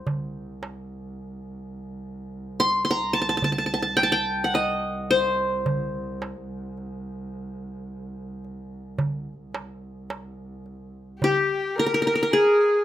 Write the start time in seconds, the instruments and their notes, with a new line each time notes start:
Already playing: qanun C5
0.07 double bass C2, darbuka dum
0.63 darbuka tek
2.60 qanun C6
2.85 qanun C6
2.91 qanun A#5
3.13 qanun A5
3.22 qanun A5
3.29 qanun A5
3.37 qanun A5
3.42 qanun A5, darbuka dum
3.52 qanun A5
3.58 qanun A5
3.66 qanun A5
3.74 qanun A5
3.82 qanun A5
3.97 qanun G5, darbuka tek
4.03 qanun A5
4.12 qanun G5
4.44 qanun F#5
4.54 qanun D#5, darbuka tek
5.10 qanun C5, darbuka ka
5.66 darbuka dum
6.22 darbuka tek
6.77 darbuka ka
8.44 darbuka ka
8.98 darbuka dum
9.54 darbuka tek
10.10 darbuka tek
10.66 darbuka ka
11.20 violin G4, qanun G4, darbuka dum
11.76 violin A#4, qanun A#4, darbuka tek
11.86 qanun A#4
11.94 qanun A#4
12.02 qanun A#4
12.07 qanun A#4
12.15 qanun A#4
12.23 qanun A#4
12.31 violin G#4, qanun G#4